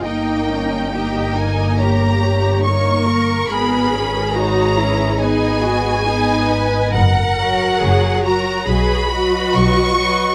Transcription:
<<
  \new Staff \with { instrumentName = "Violin section" } { \time 4/4 \key gis \minor \tempo 4 = 70 g''4. gis''8 ais''4 cis'''4 | b''4 ais''4 gis''2 | fis''4. ais''8 b''4 cis'''4 | }
  \new Staff \with { instrumentName = "Violin section" } { \time 4/4 \key gis \minor << { dis''4 dis''4 cis''2 | b'2 dis''4 dis''4 | r8 cis''4 cis''8 dis''8 dis''4 dis''8 | } \\ { ais'4 ais'4 ais'8 cis''8 cis''8 ais'8 | gis'4 cis''4 b'4 b'4 | r8 ais'4 ais'8 b'8 b'4 b'8 | } >> }
  \new Staff \with { instrumentName = "Cello section" } { \time 4/4 \key gis \minor dis'4 g'8 dis'8 g'8 g'8 dis'8 ais'8 | gis'4 fis'8 e'8 dis'8 fis'8 gis'8 b'8 | ais'4 gis'8 fis'8 gis'8 fis'4. | }
  \new Staff \with { instrumentName = "Viola section" } { \time 4/4 \key gis \minor << { dis'8 cis'8 dis'8 dis'8 g'4 ais'4~ | ais'4 gis'4 gis'4 dis'4 | r8 fis'4 fis'8 fis'8 fis'4 fis'8 | } \\ { ais4 ais2 ais4 | b8 cis'8 dis'8 cis'8 b4 b4 | r8 fis4 fis8 fis8 fis4 fis8 | } >> }
  \new Staff \with { instrumentName = "Double bass section" } { \clef bass \time 4/4 \key gis \minor g,,1 | gis,,1 | fis,,4 fis,,4 b,,4 b,,4 | }
>>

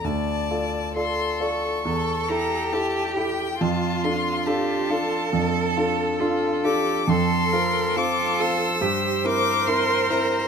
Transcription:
<<
  \new Staff \with { instrumentName = "Violin" } { \time 4/4 \key d \minor \tempo 4 = 69 a''4 c'''8 cis'''4 bes''8 a''8 g''8 | a''8 c'''8 a''2 r8 d'''8 | c'''4 d'''8 e'''4 d'''8 c'''8 bes''8 | }
  \new Staff \with { instrumentName = "Violin" } { \time 4/4 \key d \minor d''4 a'4 a'8 g'4. | f'2 a'2 | a'4 f'4 c''2 | }
  \new Staff \with { instrumentName = "Cello" } { \time 4/4 \key d \minor r2 a'4 g'4 | f'4 g'8 a'4. f'8 g'8 | a'8 bes'8 a'4 g'8 bes'4. | }
  \new Staff \with { instrumentName = "Grand piano" } { \time 4/4 \key d \minor d,8 <f' a' d''>8 <f' a' d''>8 <f' a' d''>8 e,8 <e' g' a'>8 <e' g' a'>8 <e' g' a'>8 | f,8 <d' f' a'>8 <d' f' a'>8 <d' f' a'>8 f,8 <d' f' a'>8 <d' f' a'>8 <d' f' a'>8 | f,8 <c' f' a'>8 <c' f' a'>8 <c' f' a'>8 g,8 <c' e' bes'>8 <c' e' bes'>8 <c' e' bes'>8 | }
>>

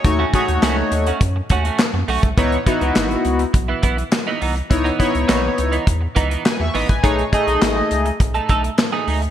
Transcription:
<<
  \new Staff \with { instrumentName = "Analog polysynth" } { \time 4/4 \key cis \minor \tempo 4 = 103 << { r1 | r1 | r2. <b' gis''>16 <e'' cis'''>16 <dis'' b''>16 <b' gis''>16~ | <b' gis''>16 r2. r8. | } \\ { <a dis' fis' cis''>8 <a dis' fis' cis''>4. r2 | <b dis' e' cis''>8 <b dis' e' fis'>4. r2 | <b dis' e' cis''>8 <b dis' e' cis''>4. r2 | <a dis' gis' cis''>8 <a dis' gis' dis''>4. r2 | } >> }
  \new Staff \with { instrumentName = "Clean electric guitar" } { \time 4/4 \key cis \minor r16 <a cis' fis'>16 <a cis' gis'>16 r16 <a cis' fis'>16 r8 <a cis' fis'>16 r8 <a cis' fis'>16 <a cis' fis'>16 r8 <a cis' fis'>16 r16 | <e b dis'>16 r16 <e b dis'>16 <e b dis'>16 r4 r16 <e b e'>16 <e b e'>16 r8 <e b dis'>16 <e b dis'>16 r16 | r16 <e b dis'>16 <e b e'>16 r16 <e b dis'>16 r8 <e b dis'>16 r8 <e b dis'>16 <e b dis'>16 r8 <e b dis'>16 r16 | <a dis' gis'>16 r16 <a dis' gis'>16 <a dis' gis'>16 r4 r16 <a dis' a'>16 <a dis' a'>16 r8 <a dis' gis'>16 <a dis' gis'>16 r16 | }
  \new Staff \with { instrumentName = "Analog synth bass" } { \clef bass \time 4/4 \key cis \minor dis,8 r16 dis,16 cis,8 dis,8 fis,8 dis,8 r16 fis,16 b,,16 bis,,16 | cis,8 r16 cis,16 gis,,8 cis,8 b,,8 b,,8 r8 bis,,8 | cis,8 r16 cis,16 b,,8 cis,8 e,8 cis,8 r16 e,16 a,,16 ais,,16 | b,,8 r16 b,,16 a,,8 cis,8 b,,8 b,,8 r8 d,8 | }
  \new DrumStaff \with { instrumentName = "Drums" } \drummode { \time 4/4 <hh bd>8 <hh bd>16 hh16 <hc hh sn>8 hh16 hh16 <hh bd>8 <hh bd>16 hh16 <hc hh sn>8 hho16 <hh bd>16 | <hh bd>16 hh16 <hh bd>16 hh16 <hc hh sn>16 hh16 hh16 hh16 <hh bd>8 <hh bd>16 hh16 <hc hh sn>8 hho16 hh16 | <hh bd>16 hh16 <hh bd>16 hh16 <hc hh sn>8 hh16 hh16 <hh bd>8 <hh bd>16 hh16 <hc hh sn>8 hho16 <hh bd>16 | <hh bd>16 hh16 <hh bd>16 hh16 <hc hh sn>8 hh16 hh16 <hh bd>16 hh16 <hh bd>16 hh16 <hc hh sn>8 hho16 hh16 | }
>>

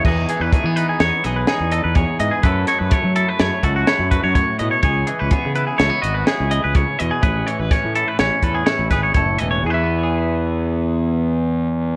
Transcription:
<<
  \new Staff \with { instrumentName = "Clean electric guitar" } { \time 5/4 \key e \major \tempo 4 = 125 dis''8 gis'16 b'16 gis'8 b'16 gis'16 cis''8 dis''16 b'16 gis'8 dis''16 b'16 cis''8 dis''16 gis'16 | b'8 cis''16 b'16 cis''8 a'16 b'16 cis''8 a'16 fis'16 cis''8 b'16 cis''16 cis''8 dis''16 cis''16 | cis''8 gis'16 b'16 gis'8 b'16 gis'16 cis''8 dis''16 b'16 gis'8 dis''16 b'16 cis''8 dis''16 gis'16 | b'8 cis''16 b'16 cis''8 a'16 b'16 cis''8 a'16 gis'16 cis''8 b'16 cis''16 cis''8 dis''16 cis''16 |
<gis' b' e''>1~ <gis' b' e''>4 | }
  \new Staff \with { instrumentName = "Clean electric guitar" } { \time 5/4 \key e \major << { <e b dis' gis'>4 a16 b16 dis'8 b8 gis'8 dis'8 a'8 gis'4 | <fis a e' a'>4 a8 e'8 a8 fis'8 e'8 fis'4. | gis'4 b8 e'8 a16 b16 fis'8 e'8 gis'4. | gis'4 cis'8 e'8 cis'8 b'8 e'8 gis'8 a'4 |
<e b gis'>1~ <e b gis'>4 | } \\ { e,8 e2.~ e8 e,8 e8 | fis,8 fis2.~ fis8 a,8 b,8 | cis8 e2.~ e8 cis8 b,8 | a,8 e2.~ e8 a,8 e8 |
e,1~ e,4 | } >> }
  \new Staff \with { instrumentName = "Fingered electric bass" } { \clef bass \time 5/4 \key e \major e,8 r16 e,16 r16 e8 r16 e,16 r16 b,,8 r16 e,8 e,8 r16 gis,16 r16 | fis,8 r16 fis,16 r16 fis8 r16 fis,16 r16 cis,8 r16 fis,8 fis,8 r16 a,16 r16 | cis,8 r16 cis,16 r16 cis8 r16 cis,16 r16 gis,,8 r16 cis,8 cis,8 r16 e,16 r16 | a,,8 r16 a,,16 r16 a,8 r16 a,,16 r16 e,8 r16 a,,16 gis,,8 fis,,8 e,,8 |
e,1~ e,4 | }
  \new DrumStaff \with { instrumentName = "Drums" } \drummode { \time 5/4 <cymc bd>8 hh8 <hh bd>8 hh8 <hh sn>8 <hh sn>8 <hh sn>8 hh8 <hh bd>8 hh8 | <hh bd>8 <hh sn>8 <hh bd>8 hh8 <hh sn>8 <hh bd>8 <hh sn>8 <hh bd>8 <hh bd>8 hh8 | <hh bd>8 hh8 <hh bd>8 hh8 <hh sn>8 hh8 <hh sn>8 hh8 <hh bd>8 hh8 | <hh bd>8 hh8 <hh bd sn>8 hh8 <hh sn>8 <hh bd>8 <hh sn>8 <hh bd sn>8 <hh bd>8 hh8 |
r4 r4 r4 r4 r4 | }
>>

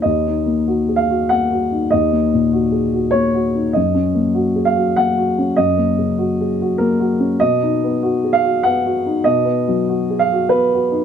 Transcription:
\new Staff \with { instrumentName = "Grand piano" } { \time 3/4 \key ees \minor \tempo 4 = 98 << { ees''4. f''8 ges''4 | ees''2 des''4 | ees''4. f''8 ges''4 | ees''2 bes'8 r8 |
dis''4. f''8 fis''4 | dis''4. f''8 b'4 | } \\ { \tuplet 3/2 { ees,8 ees'8 bes8 ges'8 aes'8 ges'8 bes8 ges'8 ees'8 } | \tuplet 3/2 { ees,8 bes8 bes,8 ges'8 aes'8 ges'8 bes8 ges'8 ees'8 } | \tuplet 3/2 { ges,8 des'8 bes8 ges'8 aes'8 ges'8 bes8 ges'8 des'8 } | \tuplet 3/2 { ges,8 bes8 des8 ges'8 aes'8 ges'8 bes8 ges'8 des'8 } |
\tuplet 3/2 { b,8 dis'8 b8 fis'8 aes'8 fis'8 b8 fis'8 dis'8 } | \tuplet 3/2 { b,8 b8 fis8 fis'8 aes'8 fis'8 b8 fis'8 dis'8 } | } >> }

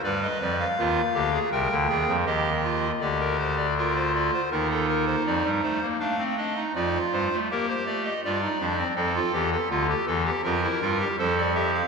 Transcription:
<<
  \new Staff \with { instrumentName = "Pipe organ" } { \time 4/4 \key c \minor \tempo 4 = 81 << { d''16 ees''16 d''16 f''4~ f''16 g''4 ees''4 | \key bes \major d''16 bes'16 c''16 d''16 bes'16 c''16 d''16 c''16 bes'16 a'16 bes'16 c''16 d''8 c''8 | f''8 ees''8 d''8 c''8 bes'16 c''16 d''16 ees''16 d''4 | a'2 bes'4 c''16 d''16 e''16 f''16 | } \\ { b'4 f'8 g'16 aes'16 bes'8 aes'8 g'8 f'8 | g'4 f'4 ees'2 | d'16 c'16 d'16 ees'16 f'4 g'4 f'16 ees'16 d'16 c'16 | c'16 f'16 g'16 a'16 f'16 g'16 a'16 g'16 f'16 e'16 f'16 g'16 a'8 g'8 | } >> }
  \new Staff \with { instrumentName = "Pipe organ" } { \clef bass \time 4/4 \key c \minor <g, g>8 <f, f>8 <ees, ees>8 <d, d>8 <c, c>16 <d, d>16 <ees, ees>16 <f, f>16 <ees, ees>4 | \key bes \major <d, d>2 <ees, ees>4 <f, f>16 <g, g>16 a16 bes16 | a4 <f, f>8 <g, g>16 a16 bes8 a8 <g, g>8 <f, f>8 | <f, f>8 <e, e>8 <d, d>8 <e, e>8 <f, f>8 <g, g>8 <f, f>4 | }
>>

